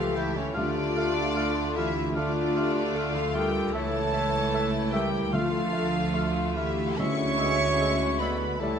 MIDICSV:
0, 0, Header, 1, 13, 480
1, 0, Start_track
1, 0, Key_signature, -1, "minor"
1, 0, Tempo, 793651
1, 341, Time_signature, 4, 2, 24, 8
1, 2737, Tempo, 815217
1, 5249, End_track
2, 0, Start_track
2, 0, Title_t, "Oboe"
2, 0, Program_c, 0, 68
2, 101, Note_on_c, 0, 79, 56
2, 198, Note_off_c, 0, 79, 0
2, 328, Note_on_c, 0, 77, 70
2, 425, Note_off_c, 0, 77, 0
2, 582, Note_on_c, 0, 77, 59
2, 679, Note_off_c, 0, 77, 0
2, 822, Note_on_c, 0, 77, 63
2, 919, Note_off_c, 0, 77, 0
2, 1074, Note_on_c, 0, 77, 58
2, 1170, Note_off_c, 0, 77, 0
2, 1304, Note_on_c, 0, 77, 66
2, 1401, Note_off_c, 0, 77, 0
2, 1548, Note_on_c, 0, 77, 59
2, 1644, Note_off_c, 0, 77, 0
2, 1795, Note_on_c, 0, 77, 60
2, 1892, Note_off_c, 0, 77, 0
2, 2028, Note_on_c, 0, 77, 58
2, 2125, Note_off_c, 0, 77, 0
2, 2268, Note_on_c, 0, 76, 67
2, 2365, Note_off_c, 0, 76, 0
2, 2502, Note_on_c, 0, 76, 56
2, 2599, Note_off_c, 0, 76, 0
2, 2749, Note_on_c, 0, 76, 61
2, 2844, Note_off_c, 0, 76, 0
2, 2974, Note_on_c, 0, 76, 54
2, 3068, Note_off_c, 0, 76, 0
2, 3209, Note_on_c, 0, 77, 64
2, 3303, Note_off_c, 0, 77, 0
2, 3451, Note_on_c, 0, 77, 53
2, 3545, Note_off_c, 0, 77, 0
2, 3701, Note_on_c, 0, 77, 58
2, 3795, Note_off_c, 0, 77, 0
2, 3933, Note_on_c, 0, 77, 53
2, 4027, Note_off_c, 0, 77, 0
2, 4196, Note_on_c, 0, 76, 63
2, 4290, Note_off_c, 0, 76, 0
2, 4426, Note_on_c, 0, 76, 54
2, 4520, Note_off_c, 0, 76, 0
2, 4669, Note_on_c, 0, 76, 57
2, 4763, Note_off_c, 0, 76, 0
2, 4911, Note_on_c, 0, 76, 50
2, 5005, Note_off_c, 0, 76, 0
2, 5158, Note_on_c, 0, 76, 57
2, 5249, Note_off_c, 0, 76, 0
2, 5249, End_track
3, 0, Start_track
3, 0, Title_t, "Violin section"
3, 0, Program_c, 1, 48
3, 0, Note_on_c, 1, 77, 86
3, 97, Note_off_c, 1, 77, 0
3, 103, Note_on_c, 1, 76, 86
3, 222, Note_off_c, 1, 76, 0
3, 228, Note_on_c, 1, 73, 83
3, 344, Note_off_c, 1, 73, 0
3, 349, Note_on_c, 1, 74, 107
3, 1067, Note_on_c, 1, 76, 90
3, 1069, Note_off_c, 1, 74, 0
3, 1302, Note_off_c, 1, 76, 0
3, 1310, Note_on_c, 1, 74, 92
3, 1894, Note_off_c, 1, 74, 0
3, 1910, Note_on_c, 1, 77, 88
3, 2025, Note_off_c, 1, 77, 0
3, 2027, Note_on_c, 1, 79, 91
3, 2221, Note_off_c, 1, 79, 0
3, 2225, Note_on_c, 1, 82, 65
3, 2261, Note_off_c, 1, 82, 0
3, 2266, Note_on_c, 1, 81, 108
3, 2976, Note_off_c, 1, 81, 0
3, 2977, Note_on_c, 1, 79, 88
3, 3211, Note_off_c, 1, 79, 0
3, 3217, Note_on_c, 1, 77, 98
3, 3938, Note_off_c, 1, 77, 0
3, 3943, Note_on_c, 1, 76, 93
3, 4184, Note_off_c, 1, 76, 0
3, 4190, Note_on_c, 1, 85, 125
3, 4902, Note_off_c, 1, 85, 0
3, 4906, Note_on_c, 1, 83, 85
3, 5139, Note_off_c, 1, 83, 0
3, 5145, Note_on_c, 1, 81, 88
3, 5249, Note_off_c, 1, 81, 0
3, 5249, End_track
4, 0, Start_track
4, 0, Title_t, "Flute"
4, 0, Program_c, 2, 73
4, 0, Note_on_c, 2, 69, 73
4, 94, Note_on_c, 2, 67, 75
4, 104, Note_off_c, 2, 69, 0
4, 221, Note_on_c, 2, 64, 75
4, 230, Note_off_c, 2, 67, 0
4, 346, Note_on_c, 2, 65, 96
4, 355, Note_off_c, 2, 64, 0
4, 1074, Note_on_c, 2, 67, 79
4, 1083, Note_off_c, 2, 65, 0
4, 1320, Note_on_c, 2, 65, 88
4, 1329, Note_off_c, 2, 67, 0
4, 1904, Note_off_c, 2, 65, 0
4, 1908, Note_on_c, 2, 69, 74
4, 2022, Note_off_c, 2, 69, 0
4, 2041, Note_on_c, 2, 70, 81
4, 2269, Note_on_c, 2, 73, 107
4, 2278, Note_off_c, 2, 70, 0
4, 2972, Note_on_c, 2, 70, 79
4, 2981, Note_off_c, 2, 73, 0
4, 3210, Note_on_c, 2, 69, 92
4, 3218, Note_off_c, 2, 70, 0
4, 3783, Note_off_c, 2, 69, 0
4, 3932, Note_on_c, 2, 67, 81
4, 4185, Note_on_c, 2, 76, 112
4, 4194, Note_off_c, 2, 67, 0
4, 4899, Note_on_c, 2, 74, 76
4, 4908, Note_off_c, 2, 76, 0
4, 5136, Note_off_c, 2, 74, 0
4, 5138, Note_on_c, 2, 73, 89
4, 5249, Note_off_c, 2, 73, 0
4, 5249, End_track
5, 0, Start_track
5, 0, Title_t, "Clarinet"
5, 0, Program_c, 3, 71
5, 0, Note_on_c, 3, 69, 85
5, 339, Note_off_c, 3, 69, 0
5, 342, Note_on_c, 3, 67, 87
5, 817, Note_on_c, 3, 65, 71
5, 826, Note_off_c, 3, 67, 0
5, 1076, Note_on_c, 3, 62, 66
5, 1085, Note_off_c, 3, 65, 0
5, 1315, Note_on_c, 3, 65, 76
5, 1324, Note_off_c, 3, 62, 0
5, 1550, Note_off_c, 3, 65, 0
5, 1552, Note_on_c, 3, 67, 75
5, 1790, Note_on_c, 3, 69, 91
5, 1799, Note_off_c, 3, 67, 0
5, 2576, Note_off_c, 3, 69, 0
5, 2749, Note_on_c, 3, 64, 74
5, 3217, Note_on_c, 3, 65, 73
5, 3226, Note_off_c, 3, 64, 0
5, 3701, Note_on_c, 3, 69, 72
5, 3710, Note_off_c, 3, 65, 0
5, 3941, Note_on_c, 3, 67, 68
5, 3950, Note_off_c, 3, 69, 0
5, 4188, Note_off_c, 3, 67, 0
5, 4194, Note_on_c, 3, 66, 89
5, 5122, Note_off_c, 3, 66, 0
5, 5136, Note_on_c, 3, 64, 70
5, 5249, Note_off_c, 3, 64, 0
5, 5249, End_track
6, 0, Start_track
6, 0, Title_t, "Trumpet"
6, 0, Program_c, 4, 56
6, 0, Note_on_c, 4, 65, 74
6, 99, Note_on_c, 4, 64, 73
6, 108, Note_off_c, 4, 65, 0
6, 224, Note_on_c, 4, 61, 70
6, 233, Note_off_c, 4, 64, 0
6, 340, Note_off_c, 4, 61, 0
6, 343, Note_on_c, 4, 62, 90
6, 1067, Note_on_c, 4, 64, 79
6, 1077, Note_off_c, 4, 62, 0
6, 1307, Note_on_c, 4, 62, 83
6, 1316, Note_off_c, 4, 64, 0
6, 1908, Note_on_c, 4, 65, 70
6, 1917, Note_off_c, 4, 62, 0
6, 2029, Note_on_c, 4, 67, 77
6, 2038, Note_off_c, 4, 65, 0
6, 2260, Note_on_c, 4, 69, 94
6, 2270, Note_off_c, 4, 67, 0
6, 2973, Note_off_c, 4, 69, 0
6, 2977, Note_on_c, 4, 67, 83
6, 3213, Note_on_c, 4, 65, 76
6, 3222, Note_off_c, 4, 67, 0
6, 3938, Note_on_c, 4, 64, 67
6, 3947, Note_off_c, 4, 65, 0
6, 4183, Note_off_c, 4, 64, 0
6, 4187, Note_on_c, 4, 73, 98
6, 4902, Note_on_c, 4, 71, 76
6, 4911, Note_off_c, 4, 73, 0
6, 5137, Note_on_c, 4, 69, 80
6, 5146, Note_off_c, 4, 71, 0
6, 5249, Note_off_c, 4, 69, 0
6, 5249, End_track
7, 0, Start_track
7, 0, Title_t, "Violin section"
7, 0, Program_c, 5, 48
7, 0, Note_on_c, 5, 57, 76
7, 0, Note_on_c, 5, 67, 76
7, 320, Note_off_c, 5, 57, 0
7, 320, Note_off_c, 5, 67, 0
7, 348, Note_on_c, 5, 57, 72
7, 348, Note_on_c, 5, 65, 77
7, 1290, Note_off_c, 5, 57, 0
7, 1290, Note_off_c, 5, 65, 0
7, 1299, Note_on_c, 5, 57, 83
7, 1299, Note_on_c, 5, 65, 79
7, 2236, Note_off_c, 5, 57, 0
7, 2236, Note_off_c, 5, 65, 0
7, 2258, Note_on_c, 5, 57, 71
7, 2263, Note_on_c, 5, 64, 73
7, 3190, Note_off_c, 5, 57, 0
7, 3193, Note_off_c, 5, 64, 0
7, 3220, Note_on_c, 5, 65, 72
7, 3224, Note_on_c, 5, 57, 74
7, 4173, Note_off_c, 5, 57, 0
7, 4190, Note_off_c, 5, 65, 0
7, 4190, Note_on_c, 5, 64, 72
7, 4191, Note_on_c, 5, 59, 68
7, 5119, Note_off_c, 5, 64, 0
7, 5120, Note_off_c, 5, 59, 0
7, 5139, Note_on_c, 5, 57, 72
7, 5141, Note_on_c, 5, 64, 65
7, 5249, Note_off_c, 5, 57, 0
7, 5249, Note_off_c, 5, 64, 0
7, 5249, End_track
8, 0, Start_track
8, 0, Title_t, "French horn section"
8, 0, Program_c, 6, 60
8, 0, Note_on_c, 6, 57, 65
8, 0, Note_on_c, 6, 67, 59
8, 234, Note_off_c, 6, 57, 0
8, 234, Note_off_c, 6, 67, 0
8, 337, Note_on_c, 6, 57, 64
8, 339, Note_on_c, 6, 65, 67
8, 2232, Note_off_c, 6, 57, 0
8, 2256, Note_on_c, 6, 57, 69
8, 2258, Note_off_c, 6, 65, 0
8, 2258, Note_on_c, 6, 64, 61
8, 2429, Note_off_c, 6, 57, 0
8, 2430, Note_off_c, 6, 64, 0
8, 3208, Note_on_c, 6, 57, 68
8, 3209, Note_on_c, 6, 65, 63
8, 3382, Note_off_c, 6, 57, 0
8, 3383, Note_off_c, 6, 65, 0
8, 4188, Note_on_c, 6, 64, 57
8, 4191, Note_on_c, 6, 56, 57
8, 4362, Note_off_c, 6, 64, 0
8, 4364, Note_off_c, 6, 56, 0
8, 5131, Note_on_c, 6, 64, 62
8, 5132, Note_on_c, 6, 55, 62
8, 5249, Note_off_c, 6, 55, 0
8, 5249, Note_off_c, 6, 64, 0
8, 5249, End_track
9, 0, Start_track
9, 0, Title_t, "Bassoon"
9, 0, Program_c, 7, 70
9, 102, Note_on_c, 7, 57, 67
9, 199, Note_off_c, 7, 57, 0
9, 349, Note_on_c, 7, 57, 63
9, 446, Note_off_c, 7, 57, 0
9, 588, Note_on_c, 7, 57, 67
9, 685, Note_off_c, 7, 57, 0
9, 827, Note_on_c, 7, 57, 64
9, 924, Note_off_c, 7, 57, 0
9, 1064, Note_on_c, 7, 57, 56
9, 1161, Note_off_c, 7, 57, 0
9, 1313, Note_on_c, 7, 57, 64
9, 1410, Note_off_c, 7, 57, 0
9, 1551, Note_on_c, 7, 57, 56
9, 1648, Note_off_c, 7, 57, 0
9, 1781, Note_on_c, 7, 57, 60
9, 1878, Note_off_c, 7, 57, 0
9, 2021, Note_on_c, 7, 57, 66
9, 2118, Note_off_c, 7, 57, 0
9, 2260, Note_on_c, 7, 57, 68
9, 2357, Note_off_c, 7, 57, 0
9, 2497, Note_on_c, 7, 57, 58
9, 2594, Note_off_c, 7, 57, 0
9, 2743, Note_on_c, 7, 57, 57
9, 2837, Note_off_c, 7, 57, 0
9, 2975, Note_on_c, 7, 57, 59
9, 3069, Note_off_c, 7, 57, 0
9, 3212, Note_on_c, 7, 57, 64
9, 3306, Note_off_c, 7, 57, 0
9, 3444, Note_on_c, 7, 57, 60
9, 3538, Note_off_c, 7, 57, 0
9, 3683, Note_on_c, 7, 57, 66
9, 3777, Note_off_c, 7, 57, 0
9, 3936, Note_on_c, 7, 57, 58
9, 4030, Note_off_c, 7, 57, 0
9, 4194, Note_on_c, 7, 56, 64
9, 4288, Note_off_c, 7, 56, 0
9, 4430, Note_on_c, 7, 56, 56
9, 4524, Note_off_c, 7, 56, 0
9, 4666, Note_on_c, 7, 56, 56
9, 4760, Note_off_c, 7, 56, 0
9, 4902, Note_on_c, 7, 56, 51
9, 4996, Note_off_c, 7, 56, 0
9, 5148, Note_on_c, 7, 55, 63
9, 5242, Note_off_c, 7, 55, 0
9, 5249, End_track
10, 0, Start_track
10, 0, Title_t, "Viola section"
10, 0, Program_c, 8, 48
10, 0, Note_on_c, 8, 52, 80
10, 0, Note_on_c, 8, 57, 72
10, 319, Note_off_c, 8, 52, 0
10, 320, Note_off_c, 8, 57, 0
10, 340, Note_on_c, 8, 50, 76
10, 343, Note_on_c, 8, 57, 79
10, 1288, Note_off_c, 8, 57, 0
10, 1304, Note_off_c, 8, 50, 0
10, 1309, Note_on_c, 8, 57, 82
10, 1311, Note_on_c, 8, 50, 81
10, 2241, Note_off_c, 8, 57, 0
10, 2242, Note_off_c, 8, 50, 0
10, 2260, Note_on_c, 8, 52, 80
10, 2260, Note_on_c, 8, 57, 73
10, 3191, Note_off_c, 8, 57, 0
10, 3207, Note_on_c, 8, 50, 75
10, 3210, Note_off_c, 8, 52, 0
10, 3211, Note_on_c, 8, 57, 82
10, 4164, Note_off_c, 8, 50, 0
10, 4166, Note_off_c, 8, 57, 0
10, 4192, Note_on_c, 8, 56, 70
10, 4194, Note_on_c, 8, 50, 72
10, 5121, Note_off_c, 8, 50, 0
10, 5121, Note_off_c, 8, 56, 0
10, 5138, Note_on_c, 8, 52, 71
10, 5141, Note_on_c, 8, 55, 73
10, 5249, Note_off_c, 8, 52, 0
10, 5249, Note_off_c, 8, 55, 0
10, 5249, End_track
11, 0, Start_track
11, 0, Title_t, "Cello section"
11, 0, Program_c, 10, 48
11, 0, Note_on_c, 10, 53, 75
11, 100, Note_off_c, 10, 53, 0
11, 104, Note_on_c, 10, 52, 76
11, 221, Note_on_c, 10, 49, 70
11, 223, Note_off_c, 10, 52, 0
11, 341, Note_off_c, 10, 49, 0
11, 345, Note_on_c, 10, 50, 77
11, 1053, Note_off_c, 10, 50, 0
11, 1070, Note_on_c, 10, 52, 75
11, 1308, Note_off_c, 10, 52, 0
11, 1316, Note_on_c, 10, 50, 77
11, 1905, Note_on_c, 10, 53, 66
11, 1909, Note_off_c, 10, 50, 0
11, 2023, Note_off_c, 10, 53, 0
11, 2025, Note_on_c, 10, 55, 75
11, 2260, Note_off_c, 10, 55, 0
11, 2268, Note_on_c, 10, 57, 88
11, 2963, Note_off_c, 10, 57, 0
11, 2974, Note_on_c, 10, 55, 82
11, 3208, Note_on_c, 10, 53, 79
11, 3210, Note_off_c, 10, 55, 0
11, 3934, Note_off_c, 10, 53, 0
11, 3936, Note_on_c, 10, 52, 72
11, 4186, Note_off_c, 10, 52, 0
11, 4193, Note_on_c, 10, 61, 89
11, 4889, Note_off_c, 10, 61, 0
11, 4898, Note_on_c, 10, 59, 72
11, 5135, Note_off_c, 10, 59, 0
11, 5141, Note_on_c, 10, 57, 73
11, 5249, Note_off_c, 10, 57, 0
11, 5249, End_track
12, 0, Start_track
12, 0, Title_t, "Timpani"
12, 0, Program_c, 11, 47
12, 344, Note_on_c, 11, 50, 78
12, 1042, Note_off_c, 11, 50, 0
12, 3211, Note_on_c, 11, 50, 76
12, 3912, Note_off_c, 11, 50, 0
12, 4188, Note_on_c, 11, 50, 71
12, 4877, Note_off_c, 11, 50, 0
12, 5249, End_track
13, 0, Start_track
13, 0, Title_t, "Double bass section"
13, 0, Program_c, 12, 48
13, 0, Note_on_c, 12, 37, 68
13, 315, Note_off_c, 12, 37, 0
13, 342, Note_on_c, 12, 38, 67
13, 2235, Note_off_c, 12, 38, 0
13, 2254, Note_on_c, 12, 37, 73
13, 3188, Note_off_c, 12, 37, 0
13, 3216, Note_on_c, 12, 38, 74
13, 5137, Note_on_c, 12, 37, 68
13, 5139, Note_off_c, 12, 38, 0
13, 5249, Note_off_c, 12, 37, 0
13, 5249, End_track
0, 0, End_of_file